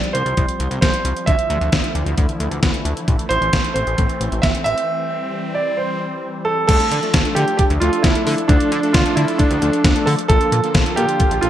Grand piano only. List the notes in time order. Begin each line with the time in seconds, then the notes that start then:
Already playing: D5
0.13 C5
0.81 C5
1.26 E5
3.29 C5
3.74 C5
4.42 E5
4.64 E5
5.54 D5
5.77 C5
6.45 A4
6.67 A4
7.35 G4
7.57 G4
7.80 F4
8.03 E4
8.48 D4
8.93 F4
9.16 E4
9.38 D4
10.06 A4
10.28 A4
10.96 G4
11.41 F4